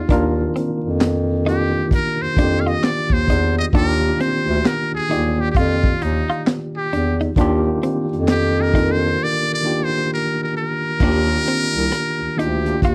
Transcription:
Already playing: muted trumpet F4
0.09 bass clarinet D#2, tine electric piano D#3 A#3 D4 F4 A#4, clean electric guitar D4, kick, closed hi-hat
0.56 clean electric guitar C4, closed hi-hat
0.84 bass clarinet F2
1.01 snare, clap, closed hi-hat
1.45 tine electric piano D#3 A#3 D4 F4 G4, clean electric guitar D#4, muted trumpet G4, closed hi-hat
1.91 muted trumpet A#4, muted clean electric guitar stroke, kick, closed hi-hat
2.21 bass clarinet F2, muted trumpet C5
2.36 bass clarinet F2, tine electric piano D#3 A#3 D4 F4 G4, clean electric guitar D4, kick, closed hi-hat
2.61 muted trumpet F5
2.67 clean electric guitar F4, muted trumpet D#5, closed hi-hat
2.84 muted trumpet D5, snare, clap, closed hi-hat
3.10 bass clarinet D#2, muted trumpet C5, kick
3.28 bass clarinet E2, clean electric guitar D#4, kick, closed hi-hat
3.58 muted trumpet D#5
3.73 bass clarinet D#2, tine electric piano D#3 A#3 D4 F4 G4, clean electric guitar D4, muted trumpet A#4, kick, closed hi-hat
4.20 clean electric guitar C4, muted trumpet C5, closed hi-hat
4.48 bass clarinet D2
4.65 muted trumpet A#4, snare, clap, closed hi-hat
4.94 bass clarinet D#2, muted trumpet G#4
5.09 bass clarinet D#2, tine electric piano D#3 A#3 F4 G4 D5, clean electric guitar D#4, closed hi-hat
5.41 muted trumpet G4
5.52 bass clarinet F2, muted trumpet G4, kick, closed hi-hat
5.57 clean electric guitar F4, muted trumpet F4
5.84 kick
6.02 bass clarinet D#2, muted trumpet D#4, muted clean electric guitar stroke, closed hi-hat
6.30 clean electric guitar F4, closed hi-hat
6.47 muted clean electric guitar stroke, snare, clap, closed hi-hat
6.77 muted trumpet G4
6.93 bass clarinet E2, clean electric guitar D4, closed hi-hat
7.21 clean electric guitar D#4, closed hi-hat
7.36 bass clarinet D#2, tine electric piano D#3 A#3 D4 F4, clean electric guitar D4, kick, closed hi-hat
7.41 tine electric piano G4
7.83 clean electric guitar C4, closed hi-hat
8.12 bass clarinet F2, closed hi-hat
8.28 muted trumpet G4, snare, clap, closed hi-hat
8.61 muted trumpet A#4
8.73 tine electric piano D#3 A#3 D4 F4 A4, clean electric guitar D#4, kick, closed hi-hat
8.83 tine electric piano A#4
8.92 muted trumpet C5
9.23 muted trumpet D5
9.54 muted trumpet D5
9.63 tine electric piano D#3 A#3 D4 F4 G4
9.84 muted trumpet C5
10.14 muted trumpet A#4
10.43 muted trumpet A#4
10.57 muted trumpet A#4
11.00 bass clarinet D#2, tine electric piano D#3 A#3 D4 F4 G4, clean electric guitar D4, kick, crash
11.47 clean electric guitar C4, closed hi-hat
11.76 bass clarinet C2
11.92 cross-stick, closed hi-hat
12.22 bass clarinet D2
12.37 bass clarinet D2, tine electric piano D#3 A#3 D4 F4 G4, clean electric guitar D#4, muted trumpet G4, closed hi-hat
12.65 tine electric piano D#3 A#3 D4 F4 G4, closed hi-hat
12.82 bass clarinet D#2, muted trumpet F4, clean electric guitar F4, kick, closed hi-hat

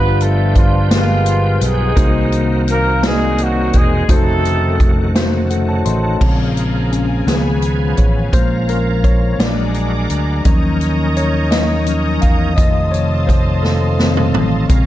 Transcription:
Already playing: fingered electric bass G1, tine electric piano G2 G3 F4 G4 B4, tonewheel organ F3 B3 G5, horn section B3 D4 F4 B4
0.21 horn section A3 A4, closed hi-hat
0.55 horn section F3 F4, kick, closed hi-hat
0.90 horn section F3 F4, tine electric piano G#3 F4 G4 A#4, snare, closed hi-hat
0.94 horn section G#3 B3, tine electric piano B4
1.26 closed hi-hat
1.61 fingered electric bass B1, horn section G#3 D#4 G#4, closed hi-hat
1.95 fingered electric bass C2, tine electric piano C3 A#3 D#4 F#4 C5, tonewheel organ D#3 A#3 C4 F#4, kick, closed hi-hat
2.32 closed hi-hat
2.68 horn section A#3 A#4, closed hi-hat
3.03 horn section G#3 G#4, tine electric piano A#3 D#4 F#4 D5, snare, closed hi-hat
3.11 tine electric piano D#5
3.38 closed hi-hat
3.42 horn section F#3 F#4
3.73 fingered electric bass E1, horn section G#3 G#4, kick, closed hi-hat
4.09 fingered electric bass F1, tonewheel organ C#3 D#3 A3 F#4, tine electric piano A3 D#4 F#4 C5, horn section C4 D#4, kick, closed hi-hat
4.13 horn section A3 A4
4.45 closed hi-hat
4.80 kick, closed hi-hat
5.15 tine electric piano A3 D#4 F#4 C5, snare, closed hi-hat
5.50 tine electric piano A4 F#5, closed hi-hat
5.69 tine electric piano C#5 A5
5.85 fingered electric bass A1, tine electric piano D#5 C6, closed hi-hat
6.03 tine electric piano C#5 A5
6.20 fingered electric bass A#1, tine electric piano C#3 G#3 C4, tonewheel organ C#3 F3 A#3 G#4, string section F5 G#5, kick, crash
6.57 closed hi-hat
6.92 tine electric piano C#4, closed hi-hat
7.27 fingered electric bass C#2, tine electric piano D#3 F3 B3 G#4, tonewheel organ F3 B3 C#4 G#4, string section F5 B5, snare, closed hi-hat
7.62 closed hi-hat
7.97 fingered electric bass A1, tine electric piano C#5, kick, closed hi-hat
8.32 fingered electric bass A#1, tonewheel organ F3 C#4 F4 A#4, tine electric piano F3 G#3 A#3 C5, string section A#5, kick, closed hi-hat
8.69 tine electric piano A#4, closed hi-hat
9.04 tine electric piano C#5, kick, closed hi-hat
9.33 tine electric piano C#5
9.39 fingered electric bass A#1, tine electric piano F#3 G#3 D4 D5, tonewheel organ G#3 D4 F#4 A#4, string section G#5 D6, snare, closed hi-hat
9.74 closed hi-hat
10.10 fingered electric bass D2, closed hi-hat
10.45 fingered electric bass D#2, tonewheel organ D#3 C#4 D#4 A#4, tine electric piano F3 F#3 C#4, string section C#6 D#6, kick, closed hi-hat
10.81 closed hi-hat
11.16 tine electric piano C#5, closed hi-hat
11.51 tine electric piano D#5, snare, closed hi-hat
11.86 tine electric piano F3 F#3 C#4, closed hi-hat
12.22 fingered electric bass E2, tine electric piano F5, kick, closed hi-hat
12.56 fingered electric bass F1, tonewheel organ C3 F3 D#4 A4, tine electric piano C3 D#3 A3 D#5, string section F5 A5 C6, kick, closed hi-hat
12.91 tine electric piano C#5, closed hi-hat
13.27 tine electric piano C5, kick, closed hi-hat
13.63 tine electric piano A4, snare
13.99 tine electric piano D#3 A3 C4, snare
14.17 mid tom
14.34 fingered electric bass A1, floor tom
14.69 fingered electric bass A#1, tine electric piano C#3 G#3 C4, tonewheel organ C#3 G#3 F4 A#4, string section G#5 A#5 C#6, kick, closed hi-hat

